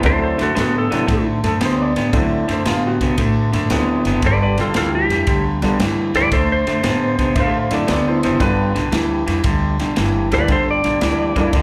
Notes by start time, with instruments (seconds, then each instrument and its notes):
Already playing: grand piano B4
0.03 upright bass D2, clean electric guitar D3 A3, grand piano F#3 C4 D4 E4 A4, electric slide guitar A4 C5, kick, snare, ride
0.22 electric slide guitar A4 C5
0.38 upright bass F#2, clean electric guitar D3 A3, electric slide guitar F#4, snare, ride
0.43 electric slide guitar A4
0.55 upright bass A2, clean electric guitar D3 B3, snare, ride
0.60 electric slide guitar F#4 A4
0.78 electric slide guitar A4
0.90 upright bass C3, clean electric guitar D3 B3, grand piano F#3 C4 D4 E4 A4, snare, ride
1.07 upright bass A2, clean electric guitar D3 A3, kick, snare, ride
1.44 upright bass F#2, clean electric guitar D3 A3, upright piano A4, snare, ride
1.61 upright bass D2, clean electric guitar D3 B3, upright piano C5, snare, ride
1.77 upright piano C#5
1.82 upright piano D5
1.96 upright bass A2, clean electric guitar D3 B3, snare, ride
2.13 upright bass D2, clean electric guitar D3 A3, grand piano F#3 C4 D4 E4 A4, kick, snare, ride
2.48 upright bass F#2, clean electric guitar D3 A3, upright piano C5, snare, ride
2.65 upright bass A2, clean electric guitar D3 B3, upright piano F4, snare, ride
2.87 upright piano F#4
3.01 upright bass C3, clean electric guitar D3 B3, kick, snare, ride
3.18 upright bass A2, clean electric guitar D3 A3, kick, snare, ride
3.53 upright bass F#2, clean electric guitar D3 A3, snare, ride
3.70 upright bass D2, clean electric guitar D3 B3, grand piano F#3 C4 D4 E4 A4, snare, ride
4.05 upright bass F#1, clean electric guitar D3 B3, snare, ride
4.22 upright bass G1, clean electric guitar G2 D3, electric slide guitar B4, kick, snare, ride
4.27 electric slide guitar D5
4.42 electric slide guitar B4 D5
4.57 upright bass B1, clean electric guitar G2 D3, electric slide guitar F4, snare, ride
4.61 electric slide guitar A4
4.74 upright bass D2, clean electric guitar G2 E3, electric slide guitar F4 A4, snare, ride
4.95 electric slide guitar G4
5.09 upright bass F2, clean electric guitar G2 E3, snare, ride
5.27 upright bass D2, clean electric guitar G2 D3, kick, snare, ride
5.62 upright bass B1, clean electric guitar G2 D3, grand piano G3 B3 D4 F4 A4, snare, ride
5.79 upright bass G1, clean electric guitar G2 E3, snare, ride
6.14 upright bass D2, clean electric guitar G2 E3, electric slide guitar B4 D5, snare, ride
6.32 upright bass D2, clean electric guitar D3 A3, electric slide guitar A4 C5, kick, snare, ride
6.52 electric slide guitar C5
6.66 upright bass F#2, clean electric guitar D3 A3, snare, ride
6.83 upright bass A2, clean electric guitar D3 B3, snare, ride
7.19 upright bass C3, clean electric guitar D3 B3, kick, snare, ride
7.35 upright bass A2, clean electric guitar D3 A3, upright piano C5 E5, kick, snare, ride
7.40 upright piano F5
7.56 upright piano C5 F5
7.70 upright bass F#2, clean electric guitar D3 A3, grand piano F#3 C4 D4 E4 A4, upright piano A4 D5, snare, ride
7.87 upright bass D2, clean electric guitar D3 B3, upright piano A4, snare, ride
7.92 upright piano D5
8.07 upright piano E4 C5
8.23 upright bass F#1, clean electric guitar D3 B3, upright piano E4 C5, snare, ride
8.39 upright bass G1, clean electric guitar G2 D3, grand piano G3 B3 D4 F4 A4, upright piano B4, kick, snare, ride
8.75 upright bass B1, clean electric guitar G2 D3, snare, ride
8.91 upright bass D2, clean electric guitar G2 E3, snare, ride
9.26 upright bass F2, clean electric guitar G2 E3, snare, ride
9.44 upright bass D2, clean electric guitar G2 D3, kick, snare, ride
9.80 upright bass B1, clean electric guitar G2 D3, snare, ride
9.96 upright bass G1, clean electric guitar G2 E3, snare, ride
10.31 upright bass D2, clean electric guitar G2 E3, grand piano G3 A#3 D4 F4 A4, electric slide guitar B4 D5, snare, ride
10.48 upright bass G1, clean electric guitar G2 D3, electric slide guitar A4 C5, kick, snare, ride
10.71 electric slide guitar D5
10.84 upright bass A#1, clean electric guitar G2 D3, snare, ride
11.01 upright bass D2, clean electric guitar G2 E3, snare, ride
11.35 upright bass F2, clean electric guitar G2 E3, grand piano G3 A#3 D4 F4 A4, kick, snare, ride
11.53 upright bass D2, clean electric guitar G2 D3, kick, snare, ride